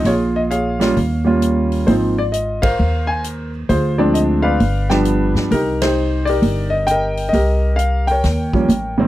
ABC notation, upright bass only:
X:1
M:4/4
L:1/8
Q:"Swing" 1/4=132
K:Cm
V:1 name="Upright bass" clef=bass
B,,,4 E,,4 | A,,,4 E,,4 | D,,4 G,,,3 G,, | C,,4 G,,,4 |
C,,4 E,,2 =A,,,2 |]